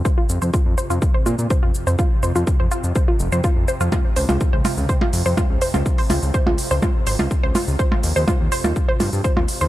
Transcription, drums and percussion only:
0.05 kick, shaker
0.29 shaker
0.42 shaker
0.54 kick, shaker
0.78 shaker
0.90 shaker
1.02 kick, shaker
1.26 shaker
1.39 shaker
1.50 kick, shaker
1.75 shaker
1.87 shaker
1.99 kick, shaker
2.23 shaker
2.35 shaker
2.47 kick, shaker
2.71 shaker
2.84 shaker
2.95 kick, shaker
3.20 shaker
3.32 shaker
3.44 kick, shaker
3.68 shaker
3.81 shaker
3.92 kick, percussion blips, shaker
4.16 open hi-hat, shaker
4.29 percussion blips, shaker
4.41 kick, shaker
4.65 open hi-hat, percussion blips, shaker
4.77 shaker
4.89 kick, shaker
5.01 percussion blips
5.13 open hi-hat, shaker
5.26 shaker
5.37 kick, percussion blips, shaker
5.61 open hi-hat, shaker
5.74 percussion blips, shaker
5.86 kick, shaker
5.98 open hi-hat
6.10 open hi-hat, percussion blips, shaker
6.22 shaker
6.34 kick, shaker
6.47 percussion blips
6.58 open hi-hat, shaker
6.71 shaker
6.82 kick, percussion blips, shaker
7.07 open hi-hat, shaker
7.19 percussion blips, shaker
7.31 kick, shaker
7.55 open hi-hat, percussion blips, shaker
7.68 shaker
7.79 kick, shaker
7.92 percussion blips
8.03 open hi-hat, shaker
8.16 shaker
8.28 kick, percussion blips, shaker
8.52 open hi-hat, shaker
8.64 percussion blips, shaker
8.76 kick, shaker
9.00 open hi-hat, percussion blips, shaker
9.13 shaker
9.24 kick, shaker
9.37 percussion blips
9.48 open hi-hat, shaker
9.61 shaker

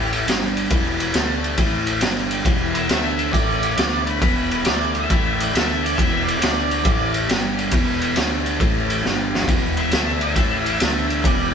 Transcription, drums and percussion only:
0.12 ride
0.28 snare, ride
0.57 ride
0.70 kick, ride
1.00 ride
1.14 snare, ride
1.44 ride
1.57 kick, ride
1.87 ride
2.01 snare, ride
2.31 ride
2.45 kick, ride
2.75 ride
2.89 snare, ride
3.19 ride
3.33 kick, ride
3.63 ride
3.77 snare, ride
4.07 ride
4.22 kick, ride
4.51 ride
4.65 snare, ride
4.95 ride
5.10 kick, ride
5.40 ride
5.55 snare, ride
5.86 ride
5.98 kick, ride
6.28 ride
6.42 snare, ride
6.71 ride
6.85 kick, ride
7.14 ride
7.29 snare, ride
7.59 ride
7.71 kick, ride
8.01 ride
8.16 snare, ride
8.46 ride
8.60 kick, ride
8.90 ride
9.05 snare
9.35 snare
9.41 floor tom
9.48 kick, ride
9.77 ride
9.91 snare, ride
10.21 ride
10.36 kick, ride
10.66 ride
10.80 snare, ride
11.10 ride
11.24 kick, ride

